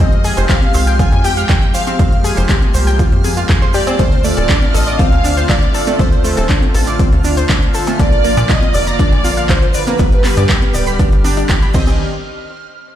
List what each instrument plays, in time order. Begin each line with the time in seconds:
Already playing: synth texture F6
0.00 analog synth bass F2, analog synth pad F3 G#3 C4 G4, digital synth lead D#5, violin section D#5
0.12 closed hi-hat
0.24 synth pluck G#4, open hi-hat, shaker
0.37 analog synth bass F1, synth pluck C5, closed hi-hat, cowbell, shaker
0.49 synth pluck G4, violin section F5, digital synth lead F5, kick, clap, closed hi-hat, shaker
0.62 closed hi-hat, high conga
0.74 analog synth bass C2, synth pluck C5, open hi-hat, high woodblock, shaker
0.87 synth pluck G5, closed hi-hat, shaker
0.99 synth pluck F4, violin section G#5, digital synth lead G#5, kick, closed hi-hat, shaker
1.12 analog synth bass F2, closed hi-hat, cowbell
1.24 synth pluck G4, violin section G5, digital synth lead G5, open hi-hat, high conga, shaker
1.37 synth pluck F5, closed hi-hat, shaker
1.49 analog synth bass F2, synth pluck G4, kick, clap, closed hi-hat, high woodblock, shaker
1.62 closed hi-hat
1.74 synth pluck C5, digital synth lead F5, violin section F5, open hi-hat, shaker
1.87 synth pluck C4, closed hi-hat, high conga, shaker
1.99 analog synth bass F2, analog synth pad A#3, synth pluck C4, kick, closed hi-hat, shaker
2.12 closed hi-hat
2.24 synth pluck G#4, open hi-hat, shaker
2.37 analog synth bass F1, synth pluck C5, closed hi-hat, cowbell, shaker
2.49 synth pluck G4, kick, clap, closed hi-hat, shaker
2.62 closed hi-hat, high conga
2.74 analog synth bass C2, synth pluck C5, open hi-hat, shaker
2.87 synth pluck G5, closed hi-hat, shaker
2.99 synth pluck F4, kick, closed hi-hat, shaker
3.12 analog synth bass F2, closed hi-hat
3.24 synth pluck G#4, open hi-hat, high conga, shaker
3.37 synth pluck F4, closed hi-hat, shaker
3.49 analog synth bass F2, synth pluck G#4, kick, clap, closed hi-hat, shaker
3.62 synth pluck C5, closed hi-hat
3.73 synth pluck G4, digital synth lead D5, violin section D5, open hi-hat, shaker
3.87 synth pluck C4, closed hi-hat, cowbell, high conga, high woodblock, shaker
3.99 analog synth bass D2, analog synth pad D3 A3 C4 F4, synth pluck A3, digital synth lead C5, violin section C5, kick, closed hi-hat, shaker
4.12 closed hi-hat
4.24 synth pluck A3, digital synth lead D5, violin section D5, open hi-hat, shaker
4.37 analog synth bass D1, synth pluck A4, closed hi-hat, cowbell, shaker
4.49 synth pluck D4, kick, clap, closed hi-hat, shaker
4.62 closed hi-hat, high conga
4.74 analog synth bass A1, synth pluck A4, digital synth lead D#5, violin section D#5, open hi-hat, high woodblock, shaker
4.87 synth pluck D5, closed hi-hat, shaker
4.99 synth pluck C4, violin section F5, digital synth lead F5, kick, closed hi-hat, shaker
5.12 analog synth bass D2, closed hi-hat, cowbell
5.24 synth pluck D4, open hi-hat, high conga, shaker
5.37 synth pluck C5, closed hi-hat, shaker
5.49 analog synth bass D2, synth pluck D4, violin section D5, digital synth lead D5, kick, clap, closed hi-hat, high woodblock, shaker
5.62 closed hi-hat
5.74 synth pluck A4, open hi-hat, shaker
5.87 synth pluck A3, closed hi-hat, high conga, shaker
5.99 analog synth bass D2, synth pluck A3, violin section C5, digital synth lead C5, kick, closed hi-hat, shaker
6.12 closed hi-hat
6.24 synth pluck A3, open hi-hat, shaker
6.37 analog synth bass D1, synth pluck A4, closed hi-hat, cowbell, shaker
6.49 synth pluck D4, kick, clap, closed hi-hat, shaker
6.62 closed hi-hat, high conga
6.74 analog synth bass A1, synth pluck A4, open hi-hat, shaker
6.87 synth pluck D5, closed hi-hat, shaker
6.99 synth pluck C4, kick, closed hi-hat, shaker
7.12 analog synth bass D2, closed hi-hat
7.24 synth pluck D4, open hi-hat, high conga, shaker
7.37 synth pluck C5, closed hi-hat, shaker
7.49 analog synth bass D2, synth pluck D4, kick, clap, closed hi-hat, shaker
7.62 closed hi-hat
7.74 synth pluck A4, open hi-hat, shaker
7.87 synth pluck A3, closed hi-hat, cowbell, high conga, high woodblock, shaker
7.99 analog synth bass A#1, analog synth pad D3 F3 A#3, synth pluck A#3, violin section D5, digital synth lead D5, kick, closed hi-hat, shaker
8.12 closed hi-hat
8.24 synth pluck A#3, open hi-hat, shaker
8.37 analog synth bass A#2, synth pluck D5, closed hi-hat, cowbell, shaker
8.49 synth pluck F4, digital synth lead D#5, violin section D#5, kick, clap, closed hi-hat, shaker
8.62 closed hi-hat, high conga
8.74 analog synth bass F1, digital synth lead D5, violin section D5, synth pluck D5, open hi-hat, high woodblock, shaker
8.87 synth pluck A#5, closed hi-hat, shaker
8.99 synth pluck D4, kick, closed hi-hat, shaker
9.12 analog synth bass A#1, closed hi-hat, cowbell
9.24 synth pluck F4, open hi-hat, high conga, shaker
9.37 synth pluck F5, closed hi-hat, shaker
9.49 analog synth bass A#1, synth pluck F4, violin section C5, digital synth lead C5, kick, clap, closed hi-hat, high woodblock, shaker
9.62 closed hi-hat
9.74 digital synth lead B4, violin section B4, synth pluck D5, open hi-hat, shaker
9.87 synth pluck A#3, closed hi-hat, high conga, shaker
9.98 analog synth bass G1, analog synth pad G3 B3 G4, synth pluck B3, kick, closed hi-hat, shaker
10.12 closed hi-hat
10.24 synth pluck B3, clap, open hi-hat, shaker
10.37 analog synth bass G2, synth pluck D5, closed hi-hat, cowbell, shaker
10.49 synth pluck G4, kick, clap, closed hi-hat, shaker
10.62 closed hi-hat, high conga
10.74 analog synth bass D1, synth pluck D5, open hi-hat, shaker
10.87 synth pluck B5, closed hi-hat, shaker
10.99 synth pluck D4, kick, closed hi-hat, shaker
11.12 analog synth bass G1, closed hi-hat
11.24 synth pluck D4, open hi-hat, high conga, shaker
11.37 synth pluck D4, closed hi-hat, shaker
11.49 analog synth bass G1, synth pluck G4, kick, clap, closed hi-hat, shaker
11.62 synth pluck B5, closed hi-hat
11.74 analog synth bass C2, analog synth pad D#3 C4 D4 G4, synth pluck C4, violin section D#5, digital synth lead D#5, kick, crash, shaker
11.87 cowbell, high conga, high woodblock, shaker